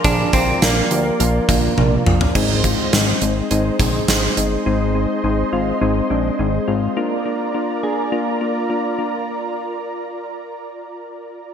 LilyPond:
<<
  \new Staff \with { instrumentName = "Analog synth pad" } { \time 4/4 \key aes \lydian \tempo 4 = 104 <f' bes' d'' bes''>1 | <aes' c'' ees'' c'''>1~ | <aes' c'' ees'' c'''>1 | <f' bes' d'' bes''>1~ |
<f' bes' d'' bes''>1 | }
  \new Staff \with { instrumentName = "Clean electric guitar" } { \time 4/4 \key aes \lydian d'8 c'8 bes2~ bes8 r8 | r1 | r1 | r1 |
r1 | }
  \new Staff \with { instrumentName = "Synth keys" } { \time 4/4 \key aes \lydian <f bes d' aes'>8 <f bes d' f'>8 <f bes d' f'>8 <f bes d' g'>8 <f bes d' f'>8 <f bes d' f'>8 <f bes d' f'>8 <f bes d' f'>8 | <aes c' ees'>8 <aes c' f'>8 <aes c' ees'>8 <aes c' ees'>8 <aes c' ees'>8 <aes c' ees'>8 <aes c' ees'>8 <aes c' ees'>8 | <aes c' ees'>8 <aes c' ees'>8 <aes c' ees'>8 <aes c' f'>8 <aes c' ees'>8 <aes c' d'>8 <aes c' ees'>8 <aes c' f'>8 | <bes d' f'>8 <bes d' f'>8 <bes d' f'>8 <bes d' aes'>8 <bes d' f'>8 <bes d' f'>8 <bes d' f'>8 <bes d' f'>8 |
r1 | }
  \new Staff \with { instrumentName = "Analog synth bass" } { \clef bass \time 4/4 \key aes \lydian bes,,8 bes,,8 bes,,8 d,8 bes,,8 bes,,8 bes,,8 bes,,8 | aes,,4 aes,,8 aes,,8 aes,,8 bes,,8 aes,,8 g,,8 | aes,,4 aes,,8 aes,,8 aes,,8 bes,,8 aes,,8 aes,,8 | r1 |
r1 | }
  \new DrumStaff \with { instrumentName = "Drums" } \drummode { \time 4/4 <hh bd>8 <hh bd>8 <hh sn>8 hh8 hh8 <hh bd>8 tommh8 toml16 tomfh16 | <cymc bd>8 <hh bd>8 <hh sn>8 hh8 hh8 <hh bd>8 <hh sn>8 hh8 | r4 r4 r4 r4 | r4 r4 r4 r4 |
r4 r4 r4 r4 | }
>>